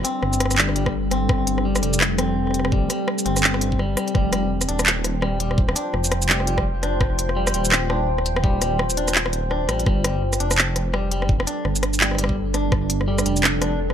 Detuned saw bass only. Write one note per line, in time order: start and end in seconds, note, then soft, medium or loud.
0.23 1.28 G1 loud
1.29 1.82 G1 medium
1.83 2.89 F1 loud
3.26 3.96 G1 loud
4.15 4.67 F1 loud
4.69 5.75 D#1 loud
5.94 7.00 F1 medium
7.01 7.53 F1 medium
7.54 8.60 D#1 loud
8.61 9.68 D#1 loud
9.69 9.85 A1 loud
9.86 10.39 G1 loud
10.40 11.46 F1 loud
11.65 12.71 G1 loud
12.72 13.25 G1 loud
13.26 13.94 F1 loud